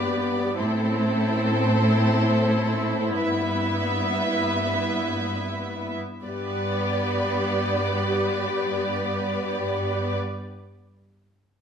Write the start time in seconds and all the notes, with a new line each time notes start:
Already playing: G2 B3 G4 B4 D5
0.58 A2 C4 E4 A4 C5
3.11 G2 B3 B4 E5
6.23 G2 B3 G4 B4 D5